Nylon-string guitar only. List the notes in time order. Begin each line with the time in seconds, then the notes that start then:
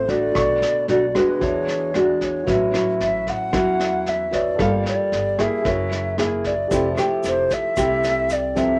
Already playing: A2
0.08 A3 D4 F#4
0.35 B2
0.88 A3 D4 F#4
1.15 G#3 D4 F#4
1.41 E3
1.94 G#3 D4 F#4
2.47 A2 F#3 C#4 E4
2.73 F#3 C#4 E4
3.53 E3 F#3 C#4 E4
4.59 G3 A#3 F4 A4
5.38 A#3 E4 G#4
5.65 F#3
6.18 A#3 E4 G#4
6.71 F3 A3 E4 G4
6.98 A3 E4 G4
7.77 C3 A3 E4 G4
8.56 F3 C4 E4